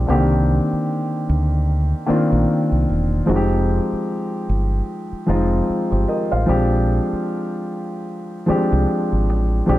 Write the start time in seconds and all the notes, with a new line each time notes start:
0.07 C2 D3 A#3 C4 D4 G4
0.13 D#3
0.73 muted fingered electric bass stroke
1.29 D2
2.06 D#3 A#3 C4 D4 F4, muted fingered electric bass stroke
2.32 A#1
2.72 C2
2.89 E1
3.26 F1 F3 G#3 C4 D#4 F#4
3.36 G4
3.93 muted fingered electric bass stroke
4.49 G1
5.12 muted fingered electric bass stroke
5.26 F1 F3 G#3 C4 D#4 F4
5.70 muted fingered electric bass stroke
5.91 G1 G4 C5
6.08 A#4 D#5
6.32 A1 C5 F5
6.46 A#1 F3 G#3 C4 D4 G4
7.13 muted fingered electric bass stroke
8.46 F3 G#3 C4 D4 G4, muted fingered electric bass stroke
8.73 C2
9.13 G#1
9.29 A1
9.66 A#1 F3 G#3 C4 D4 G4